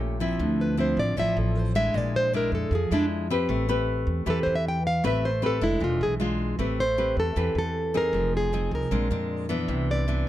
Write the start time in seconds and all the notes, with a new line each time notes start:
Already playing: A#1 A#2 A3 C#4 G4
0.20 F3 C4 E4
0.39 D2 D3
0.61 B4
0.77 F3 C4 E4 C5
0.97 A1 D5
1.17 A1 A2 F3 C4 E4 E5
1.37 A1 A4
1.59 C5
1.75 G#3 D4 E4 E5
1.94 A#1 A#2 D5
2.16 C5
2.33 G#3 D4 E4 A#4
2.52 F2 A4
2.71 F2 F3
2.75 G#4
2.91 F2 G#3 D4 E4
3.30 C4 G4 B4
3.49 A1 A3
3.69 C4 G4 B4
4.07 E2
4.26 E2 E3 C4 G4 A4 B4
4.43 E2 C5
4.55 E5
4.68 G5
4.87 F5
5.04 A1 A3 C4 G4 B4 E5
5.25 C5
5.42 C4 G4 B4
5.46 A4
5.61 F1 G#3 D4 E4
5.80 E1 E3 F4
6.01 B1 G#4
6.20 G#3 D4 F4
6.59 A1 A3 C4 G4 B4
6.80 C5
6.98 C4 G4 B4
7.17 E2 A4
7.36 E2 E3 C4 G4 B4
7.55 E2 A4
7.94 C4 D#4 G#4 A#4
8.13 F1 F3
8.37 G#4
8.53 C4 D#4 G#4
8.71 C2 A#4
8.91 A#1 A#2 G#3 C4 D4
9.10 F2 G#3 C4 D4
9.49 E3 B3 D4
9.68 C2 C3
9.91 D5
10.08 E3 B3 D4